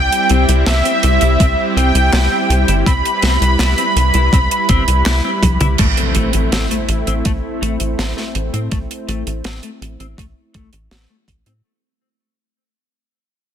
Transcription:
Already playing: analog synth pad G3 C4 E4, digital synth lead G5, supersaw synth G5
0.12 closed hi-hat
0.29 analog synth bass C2, clean electric guitar C4, closed hi-hat
0.49 analog synth bass C2, closed hi-hat
0.66 analog synth bass C2, clean electric guitar E4, digital synth lead E5, supersaw synth E5, snare, clap, closed hi-hat
0.85 clean electric guitar C4, closed hi-hat
1.03 analog synth bass C2, closed hi-hat
1.21 analog synth bass C2, clean electric guitar E4, closed hi-hat
1.40 analog synth bass C2, clean electric guitar C4, kick, closed hi-hat
1.77 analog synth bass C2, clean electric guitar C4, digital synth lead G5, supersaw synth G5, closed hi-hat
1.95 analog synth bass C2, closed hi-hat
2.13 analog synth bass C2, clean electric guitar E4, snare, clap, closed hi-hat
2.32 clean electric guitar C4
2.50 analog synth bass C2, closed hi-hat
2.68 analog synth bass G1, clean electric guitar E4, closed hi-hat
2.86 analog synth bass C2, clean electric guitar C4, analog synth pad B4, supersaw synth B5, digital synth lead B5, kick, closed hi-hat
3.05 closed hi-hat
3.22 analog synth bass C2, clean electric guitar C4, snare, closed hi-hat
3.41 analog synth bass C2, closed hi-hat
3.59 analog synth bass C2, clean electric guitar E4, snare, clap, closed hi-hat
3.78 clean electric guitar C4, closed hi-hat
3.96 analog synth bass C2, closed hi-hat
4.14 analog synth bass C2, clean electric guitar E4, closed hi-hat
4.33 analog synth bass C2, clean electric guitar C4, kick, closed hi-hat
4.51 closed hi-hat
4.69 analog synth bass G1, clean electric guitar C4, kick, closed hi-hat
4.88 analog synth bass C2, closed hi-hat
5.06 analog synth bass C2, clean electric guitar E4, snare, clap, closed hi-hat
5.24 clean electric guitar C4
5.43 analog synth bass C2, kick, closed hi-hat, high tom
5.61 analog synth bass C2, clean electric guitar E4, closed hi-hat, mid tom
5.78 analog synth bass A1, analog synth pad A3 C4 E4, clean electric guitar A3, kick, closed hi-hat, crash, impact
5.97 closed hi-hat
6.15 analog synth bass A1, clean electric guitar A3, closed hi-hat
6.33 analog synth bass A1, closed hi-hat
6.52 analog synth bass A1, clean electric guitar C4, snare, closed hi-hat
6.71 clean electric guitar A3, closed hi-hat
6.89 analog synth bass A1, closed hi-hat
7.07 analog synth bass A1, clean electric guitar C4, closed hi-hat
7.25 analog synth bass A1, clean electric guitar A3, kick, closed hi-hat
7.62 analog synth bass A1, clean electric guitar A3, closed hi-hat
7.80 analog synth bass A1, closed hi-hat
7.99 analog synth bass A1, clean electric guitar C4, snare, closed hi-hat
8.17 clean electric guitar A3, snare
8.35 analog synth bass A1, closed hi-hat
8.53 analog synth bass A2, clean electric guitar C4, closed hi-hat
8.71 analog synth bass A1, clean electric guitar A3, kick, closed hi-hat
8.91 closed hi-hat
9.08 analog synth bass A1, clean electric guitar A3, closed hi-hat
9.27 analog synth bass A1, closed hi-hat
9.44 analog synth bass A1, clean electric guitar C4, snare, closed hi-hat
9.63 clean electric guitar A3, closed hi-hat
9.81 analog synth bass A1, closed hi-hat
10.00 analog synth bass A1, clean electric guitar C4, closed hi-hat
10.18 analog synth bass A1, clean electric guitar A3, kick, closed hi-hat
10.54 analog synth bass A1, clean electric guitar A3, kick, closed hi-hat
10.73 analog synth bass A1, closed hi-hat
10.91 analog synth bass A1, clean electric guitar C4, snare, closed hi-hat
11.10 clean electric guitar A3
11.28 analog synth bass A1, kick, closed hi-hat
11.46 analog synth bass A2, clean electric guitar C4, closed hi-hat

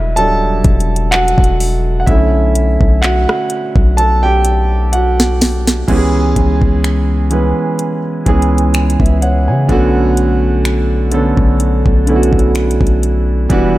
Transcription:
Already playing: 808-style bass E1, grand piano F#3 G3 D4 E4 D#5 E5
0.16 808-style bass D1, grand piano F#3 G3 D4 A4 A5, closed hi-hat
0.43 808-style bass E1
0.64 808-style bass E1, kick, closed hi-hat
0.80 closed hi-hat
0.96 closed hi-hat
1.11 grand piano F#4 F#5, clap, closed hi-hat
1.28 closed hi-hat
1.38 808-style bass E1, kick
1.44 closed hi-hat
1.60 open hi-hat
2.00 grand piano F#5
2.06 808-style bass B1, grand piano D3 A3 C#4 E4 E5, kick, closed hi-hat
2.55 closed hi-hat
2.81 808-style bass B1, kick
3.02 grand piano F#4 F#5, clap, closed hi-hat
3.29 cross-stick
3.50 closed hi-hat
3.76 808-style bass B1, kick
3.97 grand piano A4 A5, closed hi-hat
4.23 grand piano G4 G5
4.45 closed hi-hat
4.93 grand piano F#4 F#5, closed hi-hat
5.20 snare
5.41 snare, open hi-hat
5.67 snare
5.88 808-style bass C#2, grand piano E3 G#3 B3 C#4 G4, kick, closed hi-hat, crash
5.97 grand piano G#4
6.36 808-style bass C#2, kick, closed hi-hat
6.62 kick
6.84 finger snap, closed hi-hat
7.30 grand piano E3 G#3 B3 C#4 B4, closed hi-hat
7.79 closed hi-hat
8.26 808-style bass C#2, grand piano E3 G#3 B3 C#4 G#4, kick, closed hi-hat
8.42 closed hi-hat
8.58 closed hi-hat
8.74 finger snap, closed hi-hat
8.90 closed hi-hat
9.00 808-style bass C#2, grand piano B4 E5, kick
9.06 closed hi-hat
9.22 grand piano C#5 F#5, closed hi-hat
9.48 808-style bass C#3, grand piano C#5 G#5
9.69 808-style bass B1, grand piano D3 A3 B3 C#4 F#4, kick, closed hi-hat
10.17 closed hi-hat
10.65 finger snap, closed hi-hat
11.11 grand piano D3 A3 B3 C#4 A4, closed hi-hat
11.37 808-style bass B1, kick
11.60 closed hi-hat
11.86 808-style bass B1, kick
12.06 grand piano D3 A3 B3 C#4 E4, closed hi-hat
12.16 grand piano F#4
12.23 closed hi-hat
12.33 808-style bass B1, kick
12.39 closed hi-hat
12.55 finger snap, closed hi-hat
12.71 closed hi-hat
12.81 808-style bass B1, kick
12.87 closed hi-hat
13.03 closed hi-hat
13.49 808-style bass E1, grand piano E3 G3 B3 D4 F#4, kick, closed hi-hat

